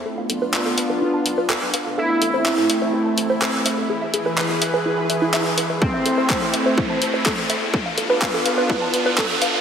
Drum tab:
HH |-o-o-o-o|-o-o-o-o|-o-o-o-o|-o-o-o-o|
CP |--x---x-|--x---x-|--x---x-|--x---x-|
BD |--------|--------|--------|o-o-o-o-|

HH |-o-o-o-o|
CP |--x---x-|
BD |o-o-o-o-|